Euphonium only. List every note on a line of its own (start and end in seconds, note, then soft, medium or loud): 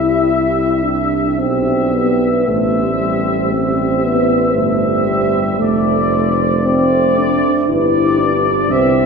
0.00 0.85 E4 medium
0.83 1.40 D4 medium
1.39 1.95 C4 medium
1.94 2.49 B3 medium
2.48 2.85 A3 medium
3.01 3.55 G3 medium
3.53 4.05 C4 medium
4.03 4.54 B3 medium
4.54 5.08 A3 medium
5.06 5.61 G3 medium
5.59 6.37 A3 medium
6.65 7.20 C4 medium
7.18 7.70 D4 medium
7.69 8.20 E4 medium
8.19 8.69 D4 medium
8.70 9.06 C4 medium